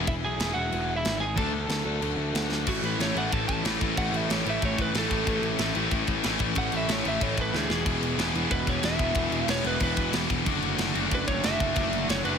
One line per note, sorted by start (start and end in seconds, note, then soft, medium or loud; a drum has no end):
0.00 0.38 E3 medium
0.00 0.39 B3 medium
0.00 0.40 E4 loud
0.00 0.41 G#4 loud
0.07 0.23 E1 medium
0.07 0.14 E4 medium
0.07 0.13 E5 medium
0.07 kick loud
0.07 crash medium
0.23 0.39 B1 medium
0.23 0.54 G#4 medium
0.23 0.58 G#5 loud
0.39 0.55 E1 medium
0.39 1.20 E3 medium
0.39 1.20 B3 medium
0.39 1.21 E4 medium
0.39 snare loud
0.39 crash medium
0.43 1.22 G#4 medium
0.54 0.72 E1 medium
0.54 0.93 F#4 medium
0.54 0.96 F#5 medium
0.72 1.04 E1 medium
0.72 crash soft
0.96 1.20 E4 medium
0.96 1.19 E5 loud
1.05 1.36 G#1 loud
1.05 snare loud
1.05 crash medium
1.20 1.36 G#4 medium
1.20 1.38 G#5 loud
1.35 1.68 D2 medium
1.35 1.84 D3 medium
1.35 1.50 D3 loud
1.35 1.85 F#3 loud
1.35 1.50 A3 loud
1.35 1.85 A3 medium
1.35 1.51 D4 loud
1.35 1.84 D4 medium
1.35 2.47 A4 medium
1.35 2.47 A5 medium
1.35 kick loud
1.35 crash medium
1.40 1.82 A4 medium
1.68 1.84 D2 medium
1.68 snare loud
1.68 crash medium
1.84 2.01 D2 medium
1.84 2.65 D3 medium
1.84 2.66 F#3 medium
1.84 2.66 A3 medium
1.84 2.66 D4 loud
1.84 2.65 A4 loud
2.01 2.17 D2 medium
2.01 crash medium
2.17 2.33 D2 medium
2.34 2.66 D2 loud
2.34 snare loud
2.34 crash medium
2.52 snare medium
2.65 2.79 A1 medium
2.65 3.17 A2 medium
2.65 3.01 A2 medium
2.65 3.16 E3 medium
2.65 3.01 E3 loud
2.65 3.16 A3 medium
2.65 3.01 A3 loud
2.65 3.15 C#4 medium
2.65 2.84 F#4 loud
2.65 kick loud
2.65 crash loud
2.65 crash medium
2.70 3.13 E4 medium
2.82 2.94 A1 medium
2.82 3.00 B4 medium
2.82 crash medium
2.98 3.11 A1 medium
2.98 3.17 A2 medium
2.98 3.16 E3 medium
2.98 3.16 A3 loud
2.98 3.16 C#5 medium
2.98 snare loud
2.98 crash medium
3.13 3.27 A1 medium
3.13 3.64 E3 medium
3.13 3.32 E3 medium
3.13 3.65 A3 medium
3.13 3.33 A3 medium
3.13 3.66 C#4 medium
3.13 3.67 E4 medium
3.13 crash medium
3.18 3.63 A2 medium
3.18 3.32 A2 medium
3.18 3.33 F#5 medium
3.32 3.44 A1 loud
3.32 3.65 A2 loud
3.32 3.65 E3 loud
3.32 3.66 A3 loud
3.32 3.47 A5 medium
3.32 kick loud
3.32 crash medium
3.48 3.60 A1 medium
3.48 3.64 A5 loud
3.48 kick medium
3.48 crash medium
3.63 3.76 A1 medium
3.63 3.95 A2 medium
3.63 3.82 A2 medium
3.63 3.96 E3 medium
3.63 3.82 E3 medium
3.63 3.97 A3 medium
3.63 3.81 A3 medium
3.63 3.98 C#4 medium
3.63 snare loud
3.63 crash loud
3.67 3.99 E4 loud
3.81 3.93 A1 medium
3.81 3.97 A2 medium
3.81 3.96 E3 medium
3.81 3.98 A3 loud
3.81 kick medium
3.81 crash medium
3.95 4.09 A1 medium
3.95 4.48 A2 medium
3.95 4.30 A2 loud
3.95 4.46 E3 medium
3.95 4.30 E3 loud
3.95 4.46 A3 loud
3.95 4.30 A3 loud
3.95 4.45 C#4 medium
3.95 4.16 F#5 loud
3.95 kick loud
3.95 crash medium
3.99 4.44 E4 loud
4.12 4.24 A1 medium
4.12 crash medium
4.16 4.32 E5 medium
4.29 4.41 A1 medium
4.29 4.47 A2 loud
4.29 4.47 E3 medium
4.29 4.46 A3 medium
4.29 4.46 C#5 medium
4.29 snare loud
4.29 crash medium
4.44 4.57 A1 medium
4.44 4.62 A2 medium
4.44 4.93 E3 medium
4.44 4.62 E3 medium
4.44 4.94 A3 medium
4.44 4.62 A3 medium
4.44 4.95 C#4 loud
4.44 4.96 E4 medium
4.44 crash medium
4.48 4.92 A2 medium
4.48 4.64 E5 medium
4.62 4.74 A1 medium
4.62 4.94 A2 medium
4.62 4.95 E3 loud
4.62 4.95 A3 loud
4.62 4.79 C#5 medium
4.62 kick loud
4.62 crash medium
4.78 4.90 A1 loud
4.78 4.96 B4 loud
4.78 kick medium
4.78 crash medium
4.93 5.06 A1 loud
4.93 5.25 A2 medium
4.93 5.12 A2 medium
4.93 5.27 E3 medium
4.93 5.12 E3 medium
4.93 5.27 A3 medium
4.93 5.12 A3 medium
4.93 5.28 C#4 loud
4.93 5.29 E4 medium
4.93 snare loud
4.93 crash medium
4.98 5.59 A4 loud
5.11 5.23 A1 medium
5.11 5.28 A2 medium
5.11 5.29 E3 medium
5.11 5.29 A3 medium
5.11 kick medium
5.11 crash medium
5.25 5.39 A1 loud
5.25 5.74 A2 medium
5.25 5.60 A2 loud
5.25 5.77 E3 loud
5.25 5.61 E3 loud
5.25 5.75 A3 loud
5.25 5.61 A3 loud
5.25 5.74 C#4 medium
5.25 kick loud
5.25 crash medium
5.29 5.74 E4 medium
5.42 5.54 A1 medium
5.42 crash medium
5.58 5.71 A1 medium
5.58 5.75 A2 loud
5.58 5.76 E3 medium
5.58 5.74 A3 loud
5.58 snare loud
5.58 crash medium
5.74 5.87 A1 medium
5.74 5.91 A2 medium
5.74 6.22 A2 medium
5.74 5.92 E3 medium
5.74 6.24 E3 medium
5.74 5.91 A3 medium
5.74 6.24 A3 medium
5.74 6.23 C#4 medium
5.74 6.27 E4 loud
5.74 crash medium
5.91 6.03 A1 medium
5.91 6.23 A2 loud
5.91 6.24 E3 loud
5.91 6.23 A3 loud
5.91 kick loud
5.91 crash medium
6.07 6.20 A1 medium
6.07 kick medium
6.07 crash medium
6.23 6.36 A1 loud
6.23 6.54 A2 medium
6.23 6.38 A2 medium
6.23 6.39 E3 medium
6.23 6.56 E3 medium
6.23 6.38 A3 medium
6.23 6.56 A3 loud
6.23 6.57 C#4 medium
6.23 6.59 E4 loud
6.23 snare loud
6.23 crash loud
6.39 6.52 A1 medium
6.39 6.54 A2 medium
6.39 6.55 E3 medium
6.39 6.55 A3 loud
6.39 kick medium
6.39 crash medium
6.55 6.68 A1 medium
6.55 7.03 A2 medium
6.55 6.87 A2 loud
6.55 6.88 E3 loud
6.55 7.06 E3 medium
6.55 6.88 A3 loud
6.55 7.04 A3 medium
6.55 7.03 C#4 loud
6.55 7.03 E4 loud
6.55 6.73 F#5 loud
6.55 kick loud
6.55 crash medium
6.72 6.84 A1 medium
6.72 crash medium
6.77 6.92 E5 medium
6.88 7.00 A1 medium
6.88 7.03 A2 medium
6.88 7.04 E3 medium
6.88 7.03 A3 medium
6.88 snare loud
6.88 crash medium
6.92 7.06 C#5 medium
7.03 7.16 A1 medium
7.03 7.19 A2 medium
7.03 7.51 A2 medium
7.03 7.20 E3 medium
7.03 7.53 E3 medium
7.03 7.20 A3 medium
7.03 7.53 A3 medium
7.03 7.52 C#4 medium
7.03 7.55 E4 medium
7.03 crash medium
7.08 7.22 E5 medium
7.20 7.33 A1 medium
7.20 7.51 A2 medium
7.20 7.52 E3 loud
7.20 7.52 A3 loud
7.20 7.38 C#5 medium
7.20 kick loud
7.20 crash medium
7.37 7.49 A1 medium
7.37 7.56 B4 loud
7.37 kick medium
7.37 crash medium
7.52 7.65 D2 medium
7.52 7.68 A2 medium
7.52 7.70 E3 medium
7.52 7.68 E3 medium
7.52 7.69 A3 medium
7.52 7.70 C#4 medium
7.52 7.72 E4 medium
7.52 snare medium
7.56 8.18 G#4 loud
7.68 7.81 E1 medium
7.68 7.86 E2 medium
7.68 7.85 B2 loud
7.68 8.17 E3 medium
7.68 7.85 E3 loud
7.68 8.19 G#3 loud
7.68 8.20 B3 medium
7.68 snare medium
7.73 8.21 E4 loud
7.85 7.97 E1 medium
7.85 8.18 E2 medium
7.85 8.16 B2 medium
7.85 8.17 E3 loud
7.85 kick loud
7.85 crash medium
8.02 8.14 E1 medium
8.02 crash medium
8.18 8.30 E1 medium
8.18 8.34 E2 medium
8.18 8.34 B2 medium
8.18 8.66 E3 medium
8.18 8.34 E3 loud
8.18 8.66 G#3 medium
8.18 8.66 B3 medium
8.18 8.65 E4 medium
8.18 snare loud
8.18 crash medium
8.34 8.46 E1 medium
8.34 8.50 E2 medium
8.34 8.50 B2 medium
8.34 8.49 E3 medium
8.34 crash medium
8.50 8.63 E1 medium
8.50 8.82 E2 medium
8.50 8.82 B2 loud
8.50 8.82 E3 loud
8.50 8.69 B4 loud
8.50 kick loud
8.50 crash medium
8.66 8.79 E1 medium
8.66 8.97 E3 medium
8.66 8.98 G#3 medium
8.66 8.99 B3 medium
8.66 8.98 E4 loud
8.66 8.84 C#5 medium
8.66 kick medium
8.66 crash medium
8.83 8.95 E1 medium
8.83 8.99 E2 medium
8.83 9.00 B2 medium
8.83 9.00 E3 medium
8.83 9.47 E5 loud
8.83 snare loud
8.83 crash medium
8.98 9.11 E1 medium
8.98 9.16 E2 medium
8.98 9.16 B2 medium
8.98 9.45 E3 medium
8.98 9.14 E3 loud
8.98 9.46 G#3 medium
8.98 9.48 B3 medium
8.98 kick medium
8.98 crash medium
9.02 9.49 E4 loud
9.14 9.27 E1 medium
9.14 9.48 E2 medium
9.14 9.47 B2 loud
9.14 9.47 E3 loud
9.14 kick loud
9.14 crash medium
9.31 9.43 E1 medium
9.31 crash medium
9.46 9.60 E1 medium
9.46 9.64 E2 medium
9.46 9.64 B2 medium
9.46 9.95 E3 medium
9.46 9.65 E3 medium
9.46 9.96 G#3 medium
9.46 9.96 B3 medium
9.46 9.94 E4 medium
9.46 9.65 C#5 medium
9.46 snare loud
9.46 crash loud
9.64 9.76 E1 loud
9.64 9.80 E2 medium
9.64 9.79 B2 medium
9.64 9.79 E3 medium
9.64 9.82 B4 loud
9.64 crash medium
9.80 9.92 E1 medium
9.80 10.13 E2 medium
9.80 10.12 B2 loud
9.80 10.11 E3 loud
9.80 10.14 B4 medium
9.80 kick loud
9.80 crash medium
9.95 10.09 E1 loud
9.95 10.29 G#3 medium
9.95 10.28 B3 medium
9.95 10.28 E4 medium
9.95 kick medium
9.95 crash medium
10.00 10.30 E3 medium
10.12 10.25 E1 medium
10.12 10.29 E2 medium
10.12 10.29 B2 medium
10.12 10.30 E3 medium
10.12 snare loud
10.12 crash loud
10.30 10.42 E1 medium
10.30 10.45 E2 medium
10.30 10.45 B2 medium
10.30 10.46 E3 loud
10.30 kick medium
10.30 crash medium
10.46 10.58 F#1 loud
10.46 10.79 D3 loud
10.46 10.98 F#3 loud
10.46 10.97 A3 loud
10.46 10.81 A3 loud
10.46 10.81 D4 loud
10.46 10.96 D4 medium
10.46 kick loud
10.46 crash medium
10.50 10.94 F#4 loud
10.61 10.73 F#1 medium
10.61 crash medium
10.78 10.90 F#1 medium
10.78 10.95 D3 loud
10.78 10.95 A3 medium
10.78 10.95 D4 medium
10.78 snare loud
10.78 crash medium
10.94 11.07 F#1 loud
10.94 11.11 D3 medium
10.94 11.11 A3 medium
10.94 11.43 A3 medium
10.94 11.12 D4 medium
10.94 11.43 D4 loud
10.94 11.42 F#4 loud
10.94 crash medium
10.99 11.42 F#3 medium
11.11 11.23 F#1 medium
11.11 11.44 D3 loud
11.11 11.44 A3 loud
11.11 11.45 D4 loud
11.11 11.27 B4 loud
11.11 kick loud
11.11 crash medium
11.27 11.39 F#1 loud
11.27 11.43 C#5 loud
11.27 kick medium
11.27 crash medium
11.43 11.56 F#1 loud
11.43 11.61 D3 medium
11.43 11.74 F#3 medium
11.43 11.75 A3 medium
11.43 11.60 A3 medium
11.43 11.76 D4 medium
11.43 11.60 D4 medium
11.43 11.77 F#4 medium
11.43 12.07 E5 loud
11.43 snare loud
11.43 crash medium
11.60 11.72 F#1 loud
11.60 11.75 D3 medium
11.60 11.75 A3 medium
11.60 11.75 D4 loud
11.60 kick medium
11.60 crash medium
11.75 11.88 F#1 medium
11.75 12.07 D3 loud
11.75 12.23 F#3 loud
11.75 12.08 A3 loud
11.75 12.24 A3 medium
11.75 12.08 D4 loud
11.75 12.24 D4 loud
11.75 12.22 F#4 loud
11.75 kick loud
11.75 crash medium
11.91 12.03 F#1 medium
11.91 crash medium
12.08 12.20 F#1 medium
12.08 12.25 D3 medium
12.08 12.24 A3 loud
12.08 12.24 D4 loud
12.08 12.25 C#5 medium
12.08 snare loud
12.08 crash medium
12.23 12.36 F#1 medium
12.23 12.38 D3 medium
12.23 12.38 F#3 medium
12.23 12.38 A3 medium
12.23 12.38 D4 loud
12.23 12.38 D4 medium
12.23 12.38 F#4 loud
12.23 12.38 B4 loud
12.23 crash medium